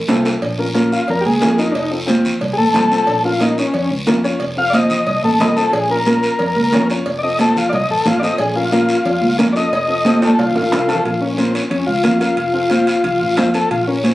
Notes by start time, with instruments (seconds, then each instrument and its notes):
0.08 fingered electric bass C2, upright piano C4 F4 A4, cowbell, high conga, low timbale, short guiro
0.25 low timbale, short guiro
0.42 fingered electric bass A#1, cowbell, long guiro
0.58 upright piano C#4 F4 A#4
0.74 upright piano C#4 F4 A#4, cowbell, high conga, short guiro
0.92 transistor combo organ F4, short guiro
1.08 fingered electric bass F2, transistor combo organ A#4, cowbell, long guiro
1.21 transistor combo organ G4
1.25 fingered electric bass C#2, transistor combo organ G#4, high conga
1.40 fingered electric bass F2, upright piano C#4 F4 A#4, cowbell, high conga, low timbale, short guiro
1.57 upright piano C#4 F4 A#4, transistor combo organ D#4, short guiro
1.72 fingered electric bass F1, transistor combo organ D4, cowbell, long guiro
1.76 transistor combo organ D#4
1.90 upright piano C4 F4 A4
2.06 upright piano C4 F4 C5, cowbell, high conga, short guiro
2.25 low conga, short guiro
2.41 fingered electric bass C2, cowbell, long guiro
2.53 transistor combo organ G#4
2.58 fingered electric bass A1, transistor combo organ A4, high conga
2.74 fingered electric bass C2, upright piano C4 F4 C5, cowbell, high conga, low conga, short guiro
2.91 upright piano C4 F4 C5, short guiro
3.07 fingered electric bass A#1, cowbell, long guiro
3.23 upright piano C#4 F4 A#4, transistor combo organ F4
3.40 upright piano C#4 F4 A#4, transistor combo organ D#4, cowbell, high conga, short guiro
3.58 transistor combo organ C#4, short guiro
3.74 fingered electric bass F2, cowbell, long guiro
3.90 fingered electric bass C#2
4.07 fingered electric bass F2, upright piano C#4 F4 A#4, cowbell, high conga, low timbale, short guiro
4.24 upright piano C#4 F4 C#5, short guiro
4.40 fingered electric bass F1, cowbell, long guiro
4.57 upright piano C4 F4 A4, transistor combo organ F5
4.70 upright piano C4, transistor combo organ D5, cowbell, high conga, short guiro
4.74 upright piano F4 C5, transistor combo organ D#5
4.90 low conga, short guiro
5.07 fingered electric bass C2, cowbell, long guiro
5.23 fingered electric bass A1, transistor combo organ A4, high conga
5.40 fingered electric bass C2, upright piano C4 F4 A4, transistor combo organ D#5, cowbell, high conga, low conga, low timbale, short guiro
5.56 upright piano C4 F4 A4, transistor combo organ A4, short guiro
5.73 fingered electric bass A#1, transistor combo organ G#4, cowbell, long guiro
5.89 upright piano C#4 F4 A#4, transistor combo organ A#4
6.06 upright piano C#4 F4 A#4, cowbell, high conga, short guiro
6.23 short guiro
6.39 fingered electric bass F2, cowbell, long guiro
6.56 fingered electric bass C#2, high conga
6.72 fingered electric bass F2, upright piano C#4 F4 C#5, cowbell, high conga, low timbale, short guiro
6.90 upright piano C#4 F4 C#5, short guiro
7.06 fingered electric bass F1, cowbell, long guiro
7.19 transistor combo organ D5
7.23 upright piano C4 F4 A4, transistor combo organ D#5
7.38 upright piano C4 F4 A4, transistor combo organ A4, cowbell, high conga, short guiro
7.56 transistor combo organ F4, low conga, short guiro
7.69 fingered electric bass C2, transistor combo organ D5, cowbell, long guiro
7.74 transistor combo organ D#5
7.90 fingered electric bass A1, transistor combo organ A4
8.05 fingered electric bass A1, upright piano C4 F4 A4, transistor combo organ F4, cowbell, high conga, low conga, short guiro
8.19 upright piano C4 F4 A4, transistor combo organ D5, short guiro
8.24 transistor combo organ D#5
8.38 fingered electric bass A#1, transistor combo organ G#4, cowbell, long guiro
8.55 upright piano C#4 F4 A#4, transistor combo organ F4
8.71 upright piano C#4 F4 A#4, transistor combo organ F4, cowbell, high conga, short guiro
8.89 short guiro
9.05 fingered electric bass F2, cowbell, long guiro
9.22 fingered electric bass C#2, high conga
9.38 fingered electric bass F2, upright piano C#4 F4 A#4, cowbell, high conga, low timbale, short guiro
9.53 upright piano C#4 F4 A4, transistor combo organ D5, short guiro
9.57 transistor combo organ D#5
9.72 fingered electric bass F1, cowbell, long guiro
9.88 upright piano C4 F4 A4
10.05 upright piano C4 F4 A4, cowbell, high conga, short guiro
10.16 high conga
10.22 transistor combo organ A4, high timbale, short guiro
10.28 high conga
10.39 fingered electric bass C2, transistor combo organ F4, cowbell, high timbale, long guiro
10.50 low conga
10.55 fingered electric bass A1, transistor combo organ F4, low timbale
10.62 low conga
10.72 fingered electric bass C2, upright piano C4 F4 A4, cowbell, low timbale, short guiro
10.87 upright piano C4 F4 A4, transistor combo organ A4, low timbale, short guiro
10.94 low conga
11.05 fingered electric bass A#1, transistor combo organ F4, high conga, high timbale, long guiro
11.20 upright piano C#4 F4 A#4, transistor combo organ C#4
11.34 transistor combo organ C4 C#4, upright piano C#4 F4 A#4
11.38 high conga, high timbale, short guiro
11.55 transistor combo organ C#4, high timbale, short guiro
11.70 fingered electric bass F2, transistor combo organ C#4, high conga, low conga, high timbale, long guiro
11.87 fingered electric bass C#2, transistor combo organ F4
12.03 fingered electric bass F2, upright piano C#4 F4 A#4, high conga, low conga, high timbale, short guiro
12.20 upright piano C#4 F4 A#4, transistor combo organ F4, high timbale, short guiro
12.37 fingered electric bass F1, high conga, high timbale, long guiro
12.53 upright piano C4 F4 A4
12.69 upright piano C4 F4 C5, high conga, high timbale, short guiro
12.87 high timbale, short guiro
13.04 fingered electric bass C2, high conga, low conga, high timbale, long guiro
13.20 fingered electric bass A1
13.37 fingered electric bass F2, upright piano C4 F4 C5, high conga, high timbale, low timbale, short guiro
13.54 upright piano C4 F4 A4, transistor combo organ A4, high timbale, short guiro
13.71 fingered electric bass A#1, transistor combo organ F4, high conga, low conga, high timbale, long guiro
13.87 upright piano C#4 F4 A#4, transistor combo organ C#4
14.04 upright piano C#4 F4 C5, high conga, high timbale, short guiro